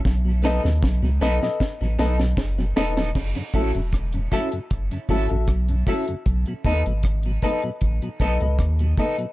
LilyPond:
<<
  \new Staff \with { instrumentName = "Upright piano" } { \time 4/4 \key fis \dorian \tempo 4 = 77 r8 <a' b' dis''>16 r8. <a' b' dis''>16 <a' b' dis''>16 r16 <b' dis''>16 <a' b' dis''>16 r8. <a' b' dis''>16 r16 | r8 <fis' a' e''>16 r8. <fis' a' e''>16 r8. <fis' a' e''>16 <fis' a' e''>16 r8 <fis' a' e''>16 r16 | r8 <a' b' dis''>16 r8. <a' b' dis''>16 r8. <a' b' dis''>16 <a' b' dis''>16 r8 <a' b' dis''>16 r16 | }
  \new Staff \with { instrumentName = "Clean electric guitar" } { \time 4/4 \key fis \dorian r8 <b dis' a'>16 r8. <b dis' a'>16 r8. <b dis' a'>16 r8. <b dis' a'>16 <b dis' a'>16 | r8 <cis' e' a'>16 r8. <cis' e' a'>16 r8. <cis' e' a'>16 r8. <cis' e' a'>16 r16 | r8 <b dis' a'>16 r8. <b dis' a'>16 r8. <b dis' a'>16 r8. <b dis' a'>16 r16 | }
  \new Staff \with { instrumentName = "Tonewheel organ" } { \clef bass \time 4/4 \key fis \dorian << { r8 <a b dis'>8 r8 <a b dis'>8 r8 <a b dis'>8 r8 <a b dis'>8 | r8 <fis a e'>8 r8 <fis a e'>8 r8 <fis a e'>8 r8 <fis a e'>8 | r8 <a b dis'>8 r8 <a b dis'>8 r8 <a b dis'>8 r8 <a b dis'>8 | } \\ { r16 <b, fis>16 r16 <b, fis>16 r16 <b, fis>16 r16 <b, fis>16 r16 <b, fis>16 r16 <b, fis>16 r16 <b, fis>16 r16 <b, fis>16 | r16 <fis, cis>16 r16 <fis, cis>16 r16 <fis, cis>16 r16 <fis, cis>16 r16 <fis, cis>16 r16 <fis, cis>16 r16 <fis, cis>16 r16 <fis, cis>16 | r16 <b, fis>16 r16 <b, fis>16 r16 <b, fis>16 r16 <b, fis>16 r16 <b, fis>16 r16 <b, fis>16 r16 <b, fis>16 r16 <b, fis>16 | } >> }
  \new Staff \with { instrumentName = "Sub bass" } { \clef bass \time 4/4 \key fis \dorian b,,8. dis,16 b,,16 cis,16 b,,16 r8 a,,16 b,,8 fis,,8 e,,8 | fis,,16 r16 a,,16 e,,8. r8 fis,,16 r16 gis,,16 a,,16 b,,8 r8 | b,,16 r16 dis,16 gis,,8. r8 a,,16 r16 b,,16 cis,16 dis,8 r8 | }
  \new DrumStaff \with { instrumentName = "Drums" } \drummode { \time 4/4 <bd sn>8 sn16 sn16 <bd sn>8 sn16 sn16 <bd sn>8 sn16 sn16 <bd sn>8 sn16 sn16 | <cymc bd>16 hh16 <hh bd>16 hh16 <hh bd ss>16 hh16 <hh bd>16 hh16 <hh bd>16 hh16 <hh bd>16 hh16 <hh bd ss>16 hh16 <hho bd>16 hh16 | <hh bd>16 hh16 <hh bd>16 hh16 <hh bd ss>16 hh16 <hh bd>16 hh16 <hh bd>16 hh16 <hh bd ss>16 hh16 <hh bd ss>16 hh16 <hho bd>16 hh16 | }
>>